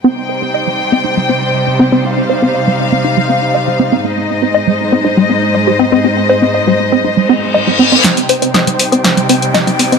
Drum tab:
HH |----------------|----------------|----------------|----------------|
SD |----------------|----------------|----------------|----------------|

HH |xxoxxxoxxxoxxxox|
SD |o---o---o---o---|